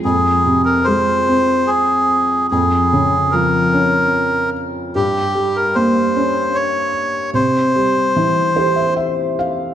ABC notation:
X:1
M:3/4
L:1/16
Q:1/4=74
K:Fm
V:1 name="Melodica"
A3 B c4 A4 | A4 B6 z2 | G3 B c4 d4 | c8 z4 |]
V:2 name="Felt piano"
z12 | z12 | z12 | z6 c =e e2 f2 |]
V:3 name="Felt piano" clef=bass
F,,2 C,2 A,2 C6 | F,,2 D,2 F,2 D6 | G,,2 G,2 B,2 D6 | C,2 G,2 =E,2 G6 |]